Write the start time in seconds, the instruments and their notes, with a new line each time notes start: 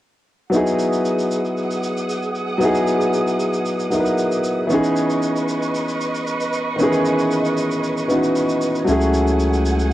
0.50 grand piano F#3 B3 D#4, string section G#4 F#5 D#6, shaker
0.55 grand piano E4 G#4
0.67 shaker
0.79 shaker
0.93 shaker
1.05 shaker
1.19 shaker
1.31 shaker
1.45 shaker
1.57 shaker
1.71 shaker
1.84 shaker
1.97 shaker
2.10 shaker
2.23 shaker
2.36 shaker
2.58 grand piano F#3 B3 D#4, shaker
2.63 grand piano E4 G#4
2.75 shaker
2.88 shaker
3.02 shaker
3.14 shaker
3.28 shaker
3.40 shaker
3.54 shaker
3.66 shaker
3.80 shaker
3.90 grand piano F#3 B3 D#4 E4 A#4, shaker
4.00 grand piano B4
4.06 shaker
4.18 shaker
4.32 shaker
4.44 shaker
4.67 grand piano E3 B3 C#4, string section B4 D#5 C#6, shaker
4.72 grand piano D#4 G#4
4.84 shaker
4.97 shaker
5.10 shaker
5.23 shaker
5.36 shaker
5.49 shaker
5.62 shaker
5.75 shaker
5.89 shaker
6.01 shaker
6.15 shaker
6.27 shaker
6.40 shaker
6.53 shaker
6.76 grand piano D#3 B3 C#4, shaker
6.81 grand piano E3 D#4 G#4
6.93 shaker
7.05 shaker
7.19 shaker
7.31 shaker
7.45 shaker
7.57 shaker
7.71 shaker
7.84 shaker
7.97 shaker
8.08 grand piano E3 B3 C#4 D#4 F#4, shaker
8.23 shaker
8.36 shaker
8.49 shaker
8.62 shaker
8.75 shaker
8.85 sub bass C#2, grand piano F#3 A3 C#4, string section A3 F#5 G#5, shaker
8.90 grand piano E4 G#4
9.01 shaker
9.14 shaker
9.27 shaker
9.40 shaker
9.54 shaker
9.66 shaker
9.80 shaker